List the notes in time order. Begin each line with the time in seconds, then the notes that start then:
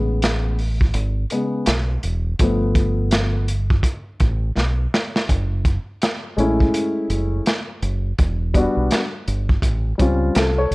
Already playing: A1 C#3 G#3 B3
0.22 snare, closed hi-hat
0.59 open hi-hat
0.81 kick
0.94 G#1, closed hi-hat
1.30 C#3 G#3 B3, closed hi-hat
1.66 B1, snare, closed hi-hat
2.03 E1, closed hi-hat
2.39 G1 F3 A3 B3, kick, closed hi-hat
2.75 kick, closed hi-hat
3.11 snare, closed hi-hat
3.48 closed hi-hat
3.71 kick
3.83 kick, closed hi-hat
4.20 A1, kick, closed hi-hat
4.57 B1, snare
4.94 snare
5.16 snare
5.29 F#1, kick, closed hi-hat
5.65 kick, closed hi-hat
6.02 snare, closed hi-hat
6.37 A1 G#3 A3 C#4 E4, closed hi-hat
6.60 kick
6.74 closed hi-hat
7.10 F#1, closed hi-hat
7.46 snare, closed hi-hat
7.82 F#1, closed hi-hat
8.18 E1, kick, closed hi-hat
8.54 G3 B3 D4 F#4, kick, closed hi-hat
8.77 B1
8.91 snare, closed hi-hat
9.28 G1, closed hi-hat
9.49 kick
9.62 A1, kick, closed hi-hat
9.98 C#2 G3 C4 C#4 F4, kick, closed hi-hat
10.35 C2 F4 A4, snare, closed hi-hat
10.58 A4 C#5
10.71 C2, closed hi-hat